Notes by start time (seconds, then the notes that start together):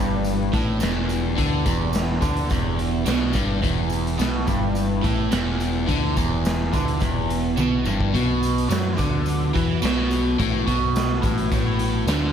Already playing: G1 G2 E3 B3 D4 G4
0.24 closed hi-hat, tambourine
0.53 A1 A2, kick, closed hi-hat, tambourine
0.80 E1 E2, snare, closed hi-hat, tambourine
1.09 closed hi-hat, tambourine
1.37 D2 D3, kick, closed hi-hat, tambourine
1.66 E1 E2, kick, closed hi-hat, tambourine
1.93 snare, closed hi-hat, tambourine
2.21 D2 D3, kick, closed hi-hat, tambourine
2.37 closed hi-hat
2.50 E1 E2, kick, closed hi-hat, tambourine
2.79 closed hi-hat, tambourine
3.06 B1 B2, snare, closed hi-hat, tambourine
3.33 G1 G2, kick, closed hi-hat, tambourine
3.62 E1 E2 E4, kick, closed hi-hat, tambourine
3.90 closed hi-hat, tambourine
4.07 closed hi-hat
4.19 B1 B2, snare, closed hi-hat, tambourine
4.47 G1 G2, kick, closed hi-hat, tambourine
4.75 closed hi-hat, tambourine
5.03 A1 A2, kick, closed hi-hat, tambourine
5.31 E1 E2, snare, closed hi-hat, tambourine
5.60 closed hi-hat, tambourine
5.87 D2 D3, kick, closed hi-hat, tambourine
6.04 snare
6.17 E1 E2, kick, closed hi-hat, tambourine
6.45 snare, closed hi-hat, tambourine
6.72 D2 D3, kick, closed hi-hat, tambourine
6.88 closed hi-hat
7.00 E1 E2, kick, closed hi-hat, tambourine
7.30 closed hi-hat, tambourine
7.57 B1 B2, high tom, tambourine
7.85 G1 G2, mid tom, tambourine
8.00 kick
8.14 B1 B2 F#3 F#4, kick, closed hi-hat, tambourine
8.43 closed hi-hat, tambourine
8.58 closed hi-hat
8.70 F#2 F#3, snare, closed hi-hat, tambourine
8.97 D2 D3, kick, closed hi-hat, tambourine
9.26 closed hi-hat, tambourine
9.54 E2 E3, kick, closed hi-hat, tambourine
9.82 B1 B2, snare, closed hi-hat, tambourine
10.11 closed hi-hat, tambourine
10.39 A1 A2, kick, closed hi-hat, tambourine
10.67 B1 B2, kick, closed hi-hat
10.96 snare, closed hi-hat, tambourine
11.23 A1 A2, kick, closed hi-hat, tambourine
11.38 closed hi-hat
11.52 A1 A2, kick, closed hi-hat, tambourine
11.79 closed hi-hat, tambourine
12.06 D2 D3, snare, closed hi-hat, tambourine